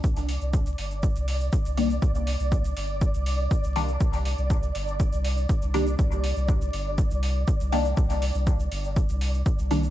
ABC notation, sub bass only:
X:1
M:4/4
L:1/16
Q:1/4=121
K:Cm
V:1 name="Sub bass" clef=bass
C,,3 C,,3 G,,,3 C,,3 z C,,3 | C,,3 C,,3 G,,,3 C,,3 z C,,3 | C,,3 C,,3 G,,,3 C,,3 z C,,3 | C,,3 C,,3 G,,,3 C,,3 z C,,3 |
C,,3 C,,3 G,,,3 C,,3 z C,,3 |]